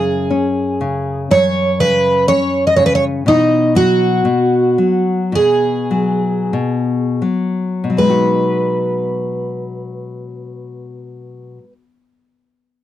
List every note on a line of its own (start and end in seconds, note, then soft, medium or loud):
0.00 1.27 F#2 medium
0.00 0.31 C#3 soft
0.00 1.27 G#4 medium
0.30 0.79 C#4 medium
0.81 1.29 C#3 soft
1.31 3.23 F#2 medium
1.31 1.80 C#5 medium
1.80 2.28 C#3 medium
1.80 2.28 B4 medium
2.28 2.77 C#4 medium
2.28 2.64 C#5 loud
2.67 2.76 D#5 medium
2.76 3.25 C#3 medium
2.76 2.85 C#5 medium
2.86 2.94 B4 medium
2.95 3.03 C#5 medium
3.26 4.24 B2 medium
3.26 3.73 D#4 medium
3.75 4.25 F#3 medium
3.75 5.31 F#4 medium
4.25 4.77 B2 medium
4.78 5.32 F#3 soft
5.32 6.52 B2 medium
5.32 7.21 G#4 medium
5.91 6.53 F#3 soft
6.53 7.21 B2 medium
7.22 7.89 F#3 soft
7.84 11.58 B2 soft
7.90 11.64 F#3 soft
7.97 11.71 G#3 soft
7.97 11.72 B4 medium
8.03 11.77 D#4 soft
8.10 11.84 F#4 soft